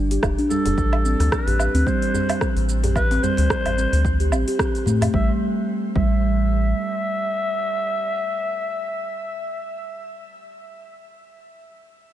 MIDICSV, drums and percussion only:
0, 0, Header, 1, 3, 480
1, 0, Start_track
1, 0, Key_signature, 0, "minor"
1, 0, Tempo, 545455
1, 681, Time_signature, 4, 2, 24, 8
1, 10674, End_track
2, 0, Start_track
2, 0, Title_t, "Djembe"
2, 442, Note_on_c, 9, 63, 64
2, 530, Note_off_c, 9, 63, 0
2, 575, Note_on_c, 9, 64, 82
2, 663, Note_off_c, 9, 64, 0
2, 816, Note_on_c, 9, 62, 58
2, 904, Note_off_c, 9, 62, 0
2, 1055, Note_on_c, 9, 62, 59
2, 1056, Note_on_c, 9, 63, 32
2, 1143, Note_off_c, 9, 62, 0
2, 1144, Note_off_c, 9, 63, 0
2, 1295, Note_on_c, 9, 63, 74
2, 1383, Note_off_c, 9, 63, 0
2, 1540, Note_on_c, 9, 62, 39
2, 1628, Note_off_c, 9, 62, 0
2, 1885, Note_on_c, 9, 64, 79
2, 1973, Note_off_c, 9, 64, 0
2, 2014, Note_on_c, 9, 62, 60
2, 2102, Note_off_c, 9, 62, 0
2, 2493, Note_on_c, 9, 62, 39
2, 2497, Note_on_c, 9, 64, 86
2, 2581, Note_off_c, 9, 62, 0
2, 2585, Note_off_c, 9, 64, 0
2, 2736, Note_on_c, 9, 62, 57
2, 2824, Note_off_c, 9, 62, 0
2, 2845, Note_on_c, 9, 64, 83
2, 2933, Note_off_c, 9, 64, 0
2, 2968, Note_on_c, 9, 62, 49
2, 2982, Note_on_c, 9, 63, 37
2, 3056, Note_off_c, 9, 62, 0
2, 3070, Note_off_c, 9, 63, 0
2, 3222, Note_on_c, 9, 63, 72
2, 3310, Note_off_c, 9, 63, 0
2, 3457, Note_on_c, 9, 62, 38
2, 3545, Note_off_c, 9, 62, 0
2, 4275, Note_on_c, 9, 63, 65
2, 4363, Note_off_c, 9, 63, 0
2, 4411, Note_on_c, 9, 64, 85
2, 4499, Note_off_c, 9, 64, 0
2, 10674, End_track
3, 0, Start_track
3, 0, Title_t, "Drums"
3, 97, Note_on_c, 9, 46, 54
3, 103, Note_on_c, 9, 82, 33
3, 185, Note_off_c, 9, 46, 0
3, 191, Note_off_c, 9, 82, 0
3, 200, Note_on_c, 9, 37, 87
3, 200, Note_on_c, 9, 77, 79
3, 204, Note_on_c, 9, 36, 104
3, 207, Note_on_c, 9, 82, 41
3, 288, Note_off_c, 9, 37, 0
3, 288, Note_off_c, 9, 77, 0
3, 292, Note_off_c, 9, 36, 0
3, 295, Note_off_c, 9, 82, 0
3, 339, Note_on_c, 9, 46, 32
3, 345, Note_on_c, 9, 82, 32
3, 427, Note_off_c, 9, 46, 0
3, 433, Note_off_c, 9, 82, 0
3, 447, Note_on_c, 9, 82, 79
3, 535, Note_off_c, 9, 82, 0
3, 577, Note_on_c, 9, 46, 55
3, 583, Note_on_c, 9, 82, 33
3, 665, Note_off_c, 9, 46, 0
3, 671, Note_off_c, 9, 82, 0
3, 684, Note_on_c, 9, 36, 101
3, 686, Note_on_c, 9, 82, 43
3, 772, Note_off_c, 9, 36, 0
3, 774, Note_off_c, 9, 82, 0
3, 815, Note_on_c, 9, 77, 83
3, 903, Note_off_c, 9, 77, 0
3, 927, Note_on_c, 9, 82, 73
3, 1015, Note_off_c, 9, 82, 0
3, 1059, Note_on_c, 9, 37, 31
3, 1059, Note_on_c, 9, 46, 58
3, 1065, Note_on_c, 9, 82, 32
3, 1147, Note_off_c, 9, 37, 0
3, 1147, Note_off_c, 9, 46, 0
3, 1153, Note_off_c, 9, 82, 0
3, 1163, Note_on_c, 9, 36, 105
3, 1163, Note_on_c, 9, 37, 95
3, 1169, Note_on_c, 9, 82, 43
3, 1251, Note_off_c, 9, 36, 0
3, 1251, Note_off_c, 9, 37, 0
3, 1257, Note_off_c, 9, 82, 0
3, 1299, Note_on_c, 9, 46, 46
3, 1387, Note_off_c, 9, 46, 0
3, 1403, Note_on_c, 9, 77, 77
3, 1409, Note_on_c, 9, 82, 72
3, 1491, Note_off_c, 9, 77, 0
3, 1497, Note_off_c, 9, 82, 0
3, 1538, Note_on_c, 9, 46, 54
3, 1544, Note_on_c, 9, 82, 31
3, 1626, Note_off_c, 9, 46, 0
3, 1632, Note_off_c, 9, 82, 0
3, 1643, Note_on_c, 9, 36, 102
3, 1650, Note_on_c, 9, 82, 44
3, 1731, Note_off_c, 9, 36, 0
3, 1738, Note_off_c, 9, 82, 0
3, 1781, Note_on_c, 9, 46, 45
3, 1869, Note_off_c, 9, 46, 0
3, 1890, Note_on_c, 9, 82, 74
3, 1978, Note_off_c, 9, 82, 0
3, 2019, Note_on_c, 9, 46, 55
3, 2019, Note_on_c, 9, 77, 87
3, 2025, Note_on_c, 9, 82, 31
3, 2107, Note_off_c, 9, 46, 0
3, 2107, Note_off_c, 9, 77, 0
3, 2113, Note_off_c, 9, 82, 0
3, 2122, Note_on_c, 9, 36, 101
3, 2122, Note_on_c, 9, 37, 91
3, 2128, Note_on_c, 9, 82, 40
3, 2210, Note_off_c, 9, 36, 0
3, 2210, Note_off_c, 9, 37, 0
3, 2216, Note_off_c, 9, 82, 0
3, 2258, Note_on_c, 9, 46, 34
3, 2264, Note_on_c, 9, 82, 30
3, 2346, Note_off_c, 9, 46, 0
3, 2352, Note_off_c, 9, 82, 0
3, 2366, Note_on_c, 9, 82, 78
3, 2454, Note_off_c, 9, 82, 0
3, 2496, Note_on_c, 9, 46, 61
3, 2502, Note_on_c, 9, 82, 33
3, 2584, Note_off_c, 9, 46, 0
3, 2590, Note_off_c, 9, 82, 0
3, 2601, Note_on_c, 9, 36, 104
3, 2601, Note_on_c, 9, 77, 82
3, 2607, Note_on_c, 9, 82, 40
3, 2689, Note_off_c, 9, 36, 0
3, 2689, Note_off_c, 9, 77, 0
3, 2695, Note_off_c, 9, 82, 0
3, 2737, Note_on_c, 9, 46, 31
3, 2743, Note_on_c, 9, 82, 30
3, 2825, Note_off_c, 9, 46, 0
3, 2831, Note_off_c, 9, 82, 0
3, 2847, Note_on_c, 9, 82, 77
3, 2935, Note_off_c, 9, 82, 0
3, 2976, Note_on_c, 9, 46, 58
3, 2982, Note_on_c, 9, 82, 32
3, 3064, Note_off_c, 9, 46, 0
3, 3070, Note_off_c, 9, 82, 0
3, 3081, Note_on_c, 9, 36, 96
3, 3082, Note_on_c, 9, 37, 109
3, 3088, Note_on_c, 9, 82, 46
3, 3169, Note_off_c, 9, 36, 0
3, 3170, Note_off_c, 9, 37, 0
3, 3176, Note_off_c, 9, 82, 0
3, 3217, Note_on_c, 9, 46, 46
3, 3217, Note_on_c, 9, 77, 75
3, 3305, Note_off_c, 9, 46, 0
3, 3305, Note_off_c, 9, 77, 0
3, 3329, Note_on_c, 9, 82, 71
3, 3417, Note_off_c, 9, 82, 0
3, 3460, Note_on_c, 9, 46, 57
3, 3466, Note_on_c, 9, 82, 34
3, 3548, Note_off_c, 9, 46, 0
3, 3554, Note_off_c, 9, 82, 0
3, 3561, Note_on_c, 9, 36, 99
3, 3567, Note_on_c, 9, 82, 43
3, 3649, Note_off_c, 9, 36, 0
3, 3655, Note_off_c, 9, 82, 0
3, 3697, Note_on_c, 9, 46, 47
3, 3703, Note_on_c, 9, 82, 30
3, 3785, Note_off_c, 9, 46, 0
3, 3791, Note_off_c, 9, 82, 0
3, 3802, Note_on_c, 9, 77, 81
3, 3808, Note_on_c, 9, 82, 76
3, 3890, Note_off_c, 9, 77, 0
3, 3896, Note_off_c, 9, 82, 0
3, 3939, Note_on_c, 9, 46, 61
3, 3946, Note_on_c, 9, 82, 33
3, 4027, Note_off_c, 9, 46, 0
3, 4034, Note_off_c, 9, 82, 0
3, 4041, Note_on_c, 9, 36, 107
3, 4042, Note_on_c, 9, 37, 101
3, 4048, Note_on_c, 9, 82, 42
3, 4129, Note_off_c, 9, 36, 0
3, 4130, Note_off_c, 9, 37, 0
3, 4136, Note_off_c, 9, 82, 0
3, 4180, Note_on_c, 9, 46, 34
3, 4186, Note_on_c, 9, 82, 34
3, 4268, Note_off_c, 9, 46, 0
3, 4274, Note_off_c, 9, 82, 0
3, 4289, Note_on_c, 9, 82, 80
3, 4377, Note_off_c, 9, 82, 0
3, 4418, Note_on_c, 9, 46, 60
3, 4418, Note_on_c, 9, 77, 87
3, 4424, Note_on_c, 9, 82, 33
3, 4506, Note_off_c, 9, 46, 0
3, 4506, Note_off_c, 9, 77, 0
3, 4512, Note_off_c, 9, 82, 0
3, 4521, Note_on_c, 9, 36, 120
3, 4609, Note_off_c, 9, 36, 0
3, 5241, Note_on_c, 9, 36, 113
3, 5329, Note_off_c, 9, 36, 0
3, 10674, End_track
0, 0, End_of_file